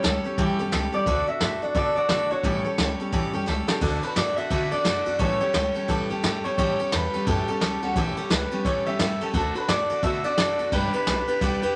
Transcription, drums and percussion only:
0.04 snare loud
0.38 kick loud
0.38 open hi-hat soft
0.72 snare loud
0.72 open hi-hat soft
1.06 kick loud
1.06 open hi-hat medium
1.40 snare loud
1.40 open hi-hat medium
1.75 kick loud
1.75 open hi-hat medium
2.09 snare loud
2.43 kick loud
2.43 open hi-hat medium
2.78 snare loud
2.78 open hi-hat medium
3.13 kick loud
3.13 open hi-hat medium
3.47 snare medium
3.68 snare loud
3.81 kick loud
3.81 crash loud
4.03 ride medium
4.16 snare loud
4.16 ride medium
4.37 ride medium
4.50 kick loud
4.50 ride medium
4.72 ride medium
4.85 snare loud
4.85 ride medium
5.06 ride medium
5.19 kick loud
5.19 ride medium
5.40 ride medium
5.54 snare loud
5.54 ride medium
5.75 ride medium
5.89 kick loud
5.89 ride medium
6.10 ride medium
6.23 snare loud
6.23 ride medium
6.45 ride medium
6.58 kick loud
6.58 ride medium
6.79 ride medium
6.92 snare loud
6.92 ride medium
7.13 ride medium
7.27 kick loud
7.27 ride medium
7.48 ride medium
7.61 snare loud
7.61 ride medium
7.82 ride medium
7.95 kick loud
7.95 ride medium
8.16 ride medium
8.30 snare loud
8.30 ride medium
8.51 ride medium
8.65 kick loud
8.65 ride medium
8.86 ride medium
8.99 snare loud
8.99 ride medium
9.21 ride medium
9.34 kick loud
9.34 ride medium
9.55 ride medium
9.68 snare loud
9.68 ride medium
9.89 ride medium
10.03 kick loud
10.03 ride medium
10.24 ride medium
10.38 snare loud
10.38 ride medium
10.59 ride medium
10.72 kick loud
10.72 ride medium
10.93 ride medium
11.07 snare loud
11.07 ride medium
11.28 ride medium
11.41 kick loud
11.41 ride medium
11.63 ride medium

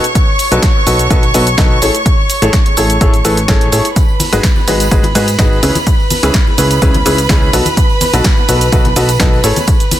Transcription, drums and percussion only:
0.04 closed hi-hat medium
0.04 shaker soft
0.15 kick loud
0.15 closed hi-hat medium
0.15 shaker soft
0.39 open hi-hat loud
0.39 shaker medium
0.52 closed hi-hat medium
0.52 shaker soft
0.63 kick loud
0.63 snare loud
0.63 closed hi-hat medium
0.63 shaker soft
0.87 open hi-hat loud
0.87 shaker medium
0.99 closed hi-hat soft
0.99 shaker soft
1.10 kick loud
1.10 closed hi-hat medium
1.10 shaker soft
1.23 closed hi-hat soft
1.34 open hi-hat loud
1.34 shaker medium
1.47 closed hi-hat medium
1.47 shaker soft
1.58 kick loud
1.58 snare loud
1.58 closed hi-hat medium
1.58 shaker soft
1.82 open hi-hat loud
1.82 shaker medium
1.95 closed hi-hat medium
1.95 shaker soft
2.06 kick loud
2.06 closed hi-hat medium
2.06 shaker soft
2.30 open hi-hat loud
2.30 shaker medium
2.42 closed hi-hat medium
2.42 shaker soft
2.53 kick loud
2.53 snare loud
2.53 closed hi-hat medium
2.53 shaker soft
2.66 closed hi-hat soft
2.77 open hi-hat medium
2.77 shaker medium
2.90 closed hi-hat medium
2.90 shaker soft
3.01 kick loud
3.01 closed hi-hat medium
3.01 shaker soft
3.14 closed hi-hat soft
3.14 shaker soft
3.25 open hi-hat loud
3.25 shaker medium
3.37 closed hi-hat soft
3.37 shaker soft
3.48 kick loud
3.48 snare loud
3.48 closed hi-hat medium
3.48 shaker soft
3.61 closed hi-hat soft
3.72 open hi-hat loud
3.72 shaker medium
3.85 closed hi-hat soft
3.85 shaker soft
3.96 kick loud
3.96 closed hi-hat medium
3.96 tambourine medium
3.96 shaker soft
4.08 tambourine soft
4.20 open hi-hat loud
4.20 ride medium
4.20 high conga medium
4.20 shaker medium
4.33 closed hi-hat medium
4.33 tambourine medium
4.33 shaker soft
4.43 kick loud
4.43 snare loud
4.43 closed hi-hat medium
4.43 tambourine medium
4.43 shaker soft
4.55 tambourine soft
4.55 high conga medium
4.68 open hi-hat medium
4.68 ride medium
4.68 shaker medium
4.80 closed hi-hat soft
4.80 tambourine medium
4.80 shaker soft
4.91 kick loud
4.91 closed hi-hat medium
4.91 tambourine medium
4.91 shaker soft
5.03 closed hi-hat soft
5.03 tambourine soft
5.03 high conga medium
5.15 open hi-hat loud
5.15 ride medium
5.15 shaker medium
5.28 closed hi-hat medium
5.28 tambourine medium
5.28 shaker soft
5.39 kick loud
5.39 snare loud
5.39 closed hi-hat medium
5.39 tambourine medium
5.39 high conga medium
5.39 shaker soft
5.53 tambourine soft
5.63 open hi-hat medium
5.63 ride medium
5.63 shaker medium
5.75 closed hi-hat medium
5.75 tambourine medium
5.75 high conga loud
5.75 shaker soft
5.87 kick loud
5.87 closed hi-hat medium
5.87 tambourine medium
5.87 shaker soft
5.99 tambourine soft
6.10 open hi-hat loud
6.10 ride medium
6.10 high conga loud
6.10 shaker medium
6.23 closed hi-hat medium
6.23 tambourine medium
6.23 shaker soft
6.34 kick loud
6.34 snare loud
6.34 closed hi-hat medium
6.34 tambourine medium
6.34 shaker soft
6.47 tambourine soft
6.47 high conga medium
6.58 open hi-hat medium
6.58 ride medium
6.58 shaker medium
6.71 closed hi-hat medium
6.71 tambourine medium
6.71 shaker soft
6.82 kick loud
6.82 closed hi-hat medium
6.82 tambourine medium
6.82 shaker soft
6.94 closed hi-hat soft
6.94 tambourine soft
6.94 high conga medium
7.06 open hi-hat loud
7.06 ride medium
7.06 shaker medium
7.18 closed hi-hat medium
7.18 tambourine medium
7.18 shaker soft
7.29 kick loud
7.29 snare loud
7.29 closed hi-hat medium
7.29 tambourine medium
7.29 high conga medium
7.29 shaker soft
7.42 tambourine soft
7.53 open hi-hat medium
7.53 ride medium
7.53 shaker medium
7.65 closed hi-hat medium
7.65 tambourine medium
7.65 high conga medium
7.65 shaker soft
7.77 kick loud
7.77 closed hi-hat medium
7.77 tambourine medium
7.77 shaker soft
7.89 tambourine soft
8.01 open hi-hat loud
8.01 ride medium
8.01 high conga loud
8.01 shaker medium
8.13 closed hi-hat medium
8.13 tambourine medium
8.13 shaker soft
8.24 kick loud
8.24 snare loud
8.24 closed hi-hat medium
8.24 tambourine medium
8.24 shaker soft
8.37 tambourine soft
8.37 high conga medium
8.49 open hi-hat medium
8.49 ride medium
8.49 shaker medium
8.61 closed hi-hat medium
8.61 tambourine medium
8.61 shaker soft
8.72 kick loud
8.72 closed hi-hat medium
8.72 tambourine medium
8.72 shaker soft
8.85 closed hi-hat soft
8.85 tambourine soft
8.85 high conga loud
8.96 open hi-hat loud
8.96 ride medium
8.96 shaker medium
9.09 closed hi-hat medium
9.09 tambourine medium
9.09 shaker soft
9.20 kick loud
9.20 snare loud
9.20 closed hi-hat medium
9.20 tambourine medium
9.20 high conga medium
9.20 shaker soft
9.33 tambourine soft
9.44 open hi-hat medium
9.44 ride medium
9.44 shaker medium
9.56 closed hi-hat medium
9.56 tambourine medium
9.56 high conga medium
9.56 shaker soft
9.67 kick loud
9.67 closed hi-hat medium
9.67 tambourine medium
9.67 shaker soft
9.80 closed hi-hat soft
9.80 tambourine soft
9.80 shaker soft
9.91 open hi-hat loud
9.91 ride medium
9.91 high conga loud
9.91 shaker medium

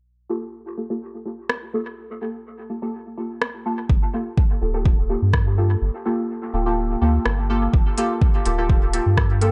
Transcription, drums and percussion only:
1.50 cross-stick medium
3.42 cross-stick medium
3.89 kick loud
4.37 kick loud
4.85 kick loud
5.33 kick loud
5.33 cross-stick medium
7.26 cross-stick medium
7.74 kick loud
7.98 closed hi-hat medium
8.21 kick loud
8.46 closed hi-hat medium
8.69 kick loud
8.93 closed hi-hat medium
9.17 kick loud
9.17 cross-stick medium
9.41 closed hi-hat medium

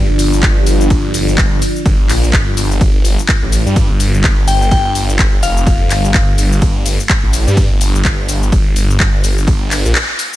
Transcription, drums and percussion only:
0.19 open hi-hat loud
0.19 shaker medium
0.33 shaker soft
0.43 kick loud
0.43 clap loud
0.43 ride medium
0.43 shaker soft
0.66 open hi-hat loud
0.66 shaker medium
0.81 shaker soft
0.90 kick loud
0.90 ride medium
0.90 shaker soft
1.14 open hi-hat loud
1.14 shaker medium
1.28 shaker soft
1.38 kick loud
1.38 clap loud
1.38 ride medium
1.38 shaker soft
1.62 open hi-hat loud
1.62 shaker medium
1.76 shaker soft
1.86 kick loud
1.86 ride medium
1.86 shaker soft
2.09 clap medium
2.09 open hi-hat loud
2.09 shaker medium
2.24 shaker soft
2.33 kick loud
2.33 clap loud
2.33 ride medium
2.33 shaker soft
2.57 open hi-hat loud
2.57 shaker medium
2.71 shaker soft
2.81 kick loud
2.81 ride medium
2.81 shaker soft
3.05 open hi-hat loud
3.05 shaker medium
3.19 shaker soft
3.29 kick loud
3.29 clap loud
3.29 ride medium
3.29 shaker soft
3.52 open hi-hat loud
3.52 shaker medium
3.67 shaker soft
3.76 kick loud
3.76 ride medium
3.76 shaker soft
4.00 open hi-hat loud
4.00 shaker medium
4.14 shaker soft
4.24 kick loud
4.24 clap loud
4.24 ride medium
4.24 shaker soft
4.48 open hi-hat loud
4.48 shaker medium
4.62 shaker soft
4.71 kick loud
4.71 ride medium
4.71 shaker soft
4.95 open hi-hat loud
4.95 shaker medium
5.10 shaker soft
5.19 kick loud
5.19 clap loud
5.19 ride medium
5.19 shaker soft
5.43 open hi-hat loud
5.43 shaker medium
5.57 shaker soft
5.67 kick loud
5.67 ride medium
5.67 shaker soft
5.90 clap medium
5.90 open hi-hat loud
5.90 shaker medium
6.05 shaker soft
6.14 kick loud
6.14 clap loud
6.14 ride medium
6.14 shaker soft
6.38 open hi-hat loud
6.38 shaker medium
6.52 shaker soft
6.62 kick loud
6.62 ride medium
6.62 shaker soft
6.86 open hi-hat loud
6.86 shaker medium
7.00 shaker soft
7.09 kick loud
7.09 clap loud
7.09 ride medium
7.09 shaker soft
7.33 open hi-hat loud
7.33 shaker medium
7.48 shaker soft
7.57 kick loud
7.57 ride medium
7.57 shaker soft
7.81 open hi-hat loud
7.81 shaker medium
7.95 shaker soft
8.05 kick loud
8.05 clap loud
8.05 ride medium
8.05 shaker soft
8.29 open hi-hat loud
8.29 shaker medium
8.43 shaker soft
8.52 kick loud
8.52 ride medium
8.52 shaker soft
8.76 open hi-hat loud
8.76 shaker medium
8.90 shaker soft
9.00 kick loud
9.00 clap loud
9.00 ride medium
9.00 shaker soft
9.24 open hi-hat loud
9.24 shaker medium
9.38 shaker soft
9.48 kick loud
9.48 ride medium
9.48 shaker soft
9.71 clap medium
9.71 open hi-hat loud
9.71 shaker medium
9.86 shaker soft
9.95 clap loud
9.95 ride medium
9.95 shaker soft
10.19 open hi-hat loud
10.19 shaker medium

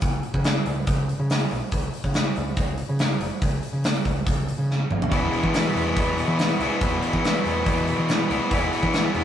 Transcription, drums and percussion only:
0.01 kick loud
0.01 open hi-hat medium
0.23 open hi-hat soft
0.34 kick medium
0.44 snare loud
0.44 open hi-hat medium
0.66 open hi-hat soft
0.87 kick medium
0.87 open hi-hat medium
1.09 open hi-hat soft
1.30 snare medium
1.30 open hi-hat medium
1.51 open hi-hat soft
1.72 kick medium
1.72 open hi-hat medium
1.94 open hi-hat soft
2.04 kick medium
2.14 snare loud
2.14 open hi-hat medium
2.36 open hi-hat soft
2.57 kick medium
2.57 open hi-hat medium
2.78 open hi-hat soft
2.99 snare medium
2.99 open hi-hat medium
3.21 open hi-hat soft
3.42 kick medium
3.42 open hi-hat medium
3.63 open hi-hat soft
3.84 snare loud
3.84 open hi-hat medium
4.05 kick medium
4.05 open hi-hat soft
4.27 kick loud
4.27 open hi-hat medium
4.48 open hi-hat soft
4.71 snare soft
4.91 mid tom medium
5.02 floor tom medium
5.12 kick medium
5.12 open hi-hat medium
5.33 open hi-hat soft
5.44 kick medium
5.54 snare loud
5.54 open hi-hat medium
5.76 open hi-hat soft
5.97 kick medium
5.97 open hi-hat medium
6.18 open hi-hat soft
6.39 snare loud
6.39 open hi-hat medium
6.61 open hi-hat soft
6.81 kick loud
6.81 open hi-hat medium
7.02 open hi-hat soft
7.13 kick medium
7.24 snare loud
7.24 open hi-hat medium
7.45 open hi-hat soft
7.66 kick loud
7.66 open hi-hat medium
7.88 open hi-hat soft
8.09 snare loud
8.09 open hi-hat medium
8.31 open hi-hat soft
8.51 kick medium
8.51 open hi-hat medium
8.73 open hi-hat soft
8.83 kick medium
8.93 snare loud
8.93 open hi-hat medium
9.15 open hi-hat soft

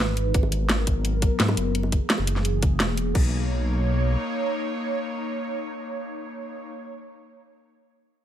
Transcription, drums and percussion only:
0.17 closed hi-hat medium
0.34 kick loud
0.34 closed hi-hat medium
0.43 high bongo soft
0.52 closed hi-hat medium
0.69 snare loud
0.69 closed hi-hat medium
0.87 kick medium
0.87 closed hi-hat medium
1.05 closed hi-hat medium
1.22 kick medium
1.22 closed hi-hat medium
1.40 snare loud
1.40 closed hi-hat medium
1.48 high bongo medium
1.57 closed hi-hat medium
1.75 closed hi-hat medium
1.83 high bongo soft
1.92 kick medium
1.92 closed hi-hat medium
2.10 snare loud
2.10 closed hi-hat medium
2.18 high bongo soft
2.27 closed hi-hat medium
2.36 snare soft
2.45 closed hi-hat medium
2.62 kick medium
2.62 closed hi-hat medium
2.80 snare loud
2.80 closed hi-hat medium
2.97 closed hi-hat medium
3.15 kick loud
3.15 crash medium

